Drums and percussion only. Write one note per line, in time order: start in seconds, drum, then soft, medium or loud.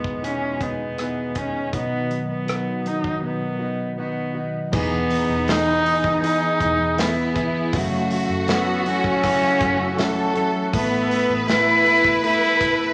0.04 kick medium
0.24 closed hi-hat medium
0.61 kick medium
0.61 closed hi-hat medium
0.98 cross-stick medium
0.98 closed hi-hat medium
1.35 kick medium
1.35 closed hi-hat medium
1.73 kick medium
1.73 closed hi-hat medium
2.11 closed hi-hat soft
2.48 cross-stick medium
2.48 closed hi-hat medium
2.86 closed hi-hat medium
3.04 kick medium
4.73 kick loud
4.73 crash medium
5.10 hi-hat pedal medium
5.10 open hi-hat medium
5.48 snare loud
5.48 hi-hat pedal medium
5.48 open hi-hat medium
5.86 hi-hat pedal medium
5.86 open hi-hat medium
6.04 kick medium
6.23 hi-hat pedal medium
6.23 open hi-hat medium
6.60 kick medium
6.60 hi-hat pedal medium
6.60 open hi-hat medium
6.98 snare loud
6.98 hi-hat pedal medium
6.98 open hi-hat medium
7.35 kick medium
7.35 hi-hat pedal medium
7.35 open hi-hat medium
7.73 kick medium
7.73 hi-hat pedal medium
7.73 open hi-hat medium
8.11 hi-hat pedal medium
8.11 open hi-hat medium
8.48 snare loud
8.48 hi-hat pedal medium
8.48 open hi-hat medium
8.86 hi-hat pedal medium
8.86 open hi-hat medium
9.04 kick medium
9.23 kick medium
9.23 hi-hat pedal medium
9.23 open hi-hat medium
9.43 snare soft
9.61 kick loud
9.61 hi-hat pedal medium
9.61 open hi-hat medium
9.98 snare medium
9.98 hi-hat pedal medium
9.98 open hi-hat medium
10.36 hi-hat pedal medium
10.36 open hi-hat medium
10.73 kick loud
10.73 hi-hat pedal medium
10.73 open hi-hat loud
11.11 hi-hat pedal medium
11.11 open hi-hat medium
11.48 snare loud
11.48 hi-hat pedal medium
11.48 open hi-hat medium
11.86 hi-hat pedal soft
11.86 open hi-hat medium
12.04 kick medium
12.24 hi-hat pedal medium
12.24 open hi-hat medium
12.43 snare soft
12.61 kick medium
12.61 hi-hat pedal medium
12.61 open hi-hat medium